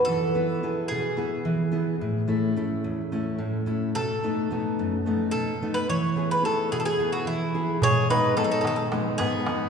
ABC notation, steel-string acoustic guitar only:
X:1
M:7/8
L:1/8
Q:1/4=108
K:E
V:1 name="Steel-string acoustic guitar"
E, [B,EB] [B,EG] B,, [B,EG] E, [B,EG] | A,, [A,CE] [A,CE] E,, [A,CE] A,, [A,CE] | B,, [A,B,D] [A,B,D] F,, [A,B,D] B,, [A,B,D] | E, [B,EG] [B,EG] B,, [B,EG] E, [B,EG] |
G,, [G,B,D] [G,B,D] D, [G,B,D] G,, [G,B,D] |]